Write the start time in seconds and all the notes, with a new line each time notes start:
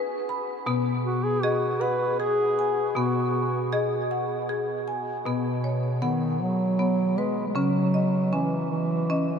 Already playing: B4 F#5 G#5
0.29 B5
0.66 B2 B3
1.04 F#4
1.24 G#4
1.42 F#4 G#4 D#5
1.81 B4 F#5
2.19 G#4
2.59 G#5
2.90 G#4
2.95 B2 B3 F#4
3.72 G#4 D#5
4.11 F#5
4.49 G#4
4.88 G#5
5.26 B2 B3
5.64 C#5
6.02 D#3 B3 F#5
6.42 F#3
6.79 B3 C#5
7.18 G#3 B4
7.48 G#3
7.55 C#3 F#3 C#4
7.94 D#5
8.33 E3 C#4 G#5
8.70 E3
9.10 C#4 D#5